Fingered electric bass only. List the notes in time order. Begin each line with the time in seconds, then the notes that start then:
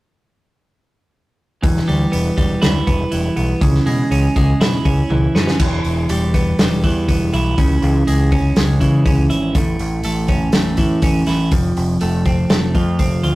1.64 E1
1.89 D2
2.13 E1
2.38 E1
2.63 D2
2.88 E1
3.12 E1
3.36 B1
3.62 C#2
3.86 B2
4.10 C#2
4.36 C#2
4.60 B2
4.85 C#2
5.10 C#2
5.35 F#2
5.60 E1
5.84 E1
6.09 E1
6.59 E1
6.84 E2
7.09 E1
7.33 B1
7.58 C#2
7.82 C#2
8.07 C#2
8.57 C#2
8.81 C#3
9.06 C#2
9.31 G#1
9.55 A1
9.80 A1
10.05 A1
10.53 A1
10.78 A2
11.03 A1
11.27 A1
11.52 F1
11.77 F1
12.02 F1
12.50 F1
12.75 F2
12.99 F1
13.23 D2